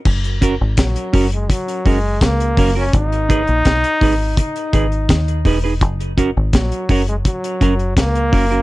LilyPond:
<<
  \new Staff \with { instrumentName = "Clean electric guitar" } { \time 4/4 \key fis \mixolydian \tempo 4 = 84 r8 <cis' fis' ais'>16 r8. <cis' fis' ais'>16 r8. <cis' fis' ais'>16 r8. <cis' fis' ais'>16 <cis' fis' ais'>16 | r8 <dis' gis' b'>16 r8. <dis' gis' b'>16 r8. <dis' gis' b'>16 r8. <dis' gis' b'>16 <dis' gis' b'>16 | r8 <cis' fis' ais'>16 r8. <cis' fis' ais'>16 r8. <cis' fis' ais'>16 r8. <cis' fis' ais'>16 <cis' fis' ais'>16 | }
  \new Staff \with { instrumentName = "Trombone" } { \clef bass \time 4/4 \key fis \mixolydian r4 fis8. gis16 fis8 gis8 ais8. cis'16 | dis'2 dis'4. r8 | r4 fis8. gis16 fis4 ais4 | }
  \new Staff \with { instrumentName = "Fingered electric bass" } { \clef bass \time 4/4 \key fis \mixolydian fis,,8. gis,,16 ais,,16 r16 fis,,8 r8 fis,,8 cis,8 fis,,8 | gis,,8. ais,,16 b,,16 r16 gis,,8 r8 gis,,8 dis,8 e,,8 | fis,,8. gis,,16 ais,,16 r16 fis,,8 r8 fis,,8 cis,8 fis,,8 | }
  \new DrumStaff \with { instrumentName = "Drums" } \drummode { \time 4/4 <cymc bd>16 hh16 <hh bd>8 <hh bd sn>16 hh16 <hho bd>16 hh16 <hh bd>16 hh16 <hho bd>8 <hh bd sn>16 hh16 <hho bd>8 | <hh bd>16 hh16 <hh bd>16 hh16 <hh bd sn>16 hh16 <hho bd>8 <hh bd>16 hh16 <hh bd>16 hh16 <hh bd sn>16 hh16 <hho bd>8 | <hh bd>16 hh16 <hh bd>8 <hh bd sn>16 hh16 <hho bd>16 hh16 <hh bd>16 hh16 <hh bd>16 hh16 <hh bd sn>16 hh16 <hho bd>16 hh16 | }
>>